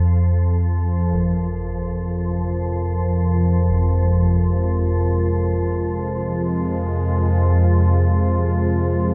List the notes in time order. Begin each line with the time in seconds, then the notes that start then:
Already playing: F2 F3 G#4
1.13 F2 C3 F3 A#4, concert bass drum
3.62 G#3
3.70 concert bass drum
4.26 F4